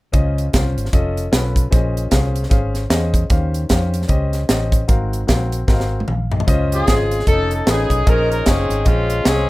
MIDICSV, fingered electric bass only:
0, 0, Header, 1, 2, 480
1, 0, Start_track
1, 0, Key_signature, -5, "major"
1, 0, Tempo, 396563
1, 167, Time_signature, 4, 2, 24, 8
1, 11493, End_track
2, 0, Start_track
2, 0, Title_t, "Fingered electric bass"
2, 0, Program_c, 0, 33
2, 162, Note_on_c, 0, 37, 87
2, 572, Note_off_c, 0, 37, 0
2, 654, Note_on_c, 0, 36, 90
2, 894, Note_off_c, 0, 36, 0
2, 928, Note_on_c, 0, 32, 72
2, 1094, Note_off_c, 0, 32, 0
2, 1124, Note_on_c, 0, 29, 82
2, 1532, Note_off_c, 0, 29, 0
2, 1600, Note_on_c, 0, 35, 86
2, 2010, Note_off_c, 0, 35, 0
2, 2089, Note_on_c, 0, 34, 91
2, 2495, Note_off_c, 0, 34, 0
2, 2564, Note_on_c, 0, 36, 91
2, 2971, Note_off_c, 0, 36, 0
2, 3040, Note_on_c, 0, 32, 83
2, 3449, Note_off_c, 0, 32, 0
2, 3511, Note_on_c, 0, 40, 91
2, 3923, Note_off_c, 0, 40, 0
2, 3994, Note_on_c, 0, 39, 89
2, 4405, Note_off_c, 0, 39, 0
2, 4482, Note_on_c, 0, 41, 98
2, 4890, Note_off_c, 0, 41, 0
2, 4954, Note_on_c, 0, 37, 86
2, 5365, Note_off_c, 0, 37, 0
2, 5438, Note_on_c, 0, 33, 98
2, 5847, Note_off_c, 0, 33, 0
2, 5918, Note_on_c, 0, 32, 94
2, 6327, Note_off_c, 0, 32, 0
2, 6404, Note_on_c, 0, 34, 83
2, 6811, Note_off_c, 0, 34, 0
2, 6876, Note_on_c, 0, 32, 87
2, 7287, Note_off_c, 0, 32, 0
2, 7360, Note_on_c, 0, 34, 88
2, 7769, Note_off_c, 0, 34, 0
2, 7840, Note_on_c, 0, 37, 93
2, 8250, Note_off_c, 0, 37, 0
2, 8327, Note_on_c, 0, 32, 84
2, 8734, Note_off_c, 0, 32, 0
2, 8798, Note_on_c, 0, 29, 92
2, 9209, Note_off_c, 0, 29, 0
2, 9282, Note_on_c, 0, 33, 85
2, 9527, Note_off_c, 0, 33, 0
2, 9561, Note_on_c, 0, 35, 85
2, 9730, Note_off_c, 0, 35, 0
2, 9770, Note_on_c, 0, 34, 93
2, 10177, Note_off_c, 0, 34, 0
2, 10248, Note_on_c, 0, 30, 84
2, 10491, Note_off_c, 0, 30, 0
2, 10529, Note_on_c, 0, 32, 78
2, 10696, Note_off_c, 0, 32, 0
2, 10727, Note_on_c, 0, 34, 85
2, 11136, Note_off_c, 0, 34, 0
2, 11201, Note_on_c, 0, 36, 93
2, 11448, Note_off_c, 0, 36, 0
2, 11493, End_track
0, 0, End_of_file